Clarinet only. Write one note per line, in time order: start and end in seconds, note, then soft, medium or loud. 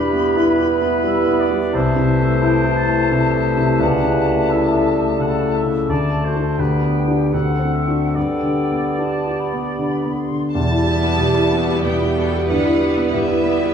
0.00 0.38 G4 medium
0.37 1.74 B4 medium
1.75 3.81 C5 medium
3.79 4.93 B4 medium
5.18 5.85 A4 medium
6.26 6.62 F#4 soft
6.60 7.35 G4 soft
7.33 8.14 A4 soft
8.14 9.00 A4 soft
8.98 9.78 G4 soft
10.54 11.80 E5 soft
11.83 12.47 E5 soft
12.48 13.11 E5 soft
13.12 13.74 E5 soft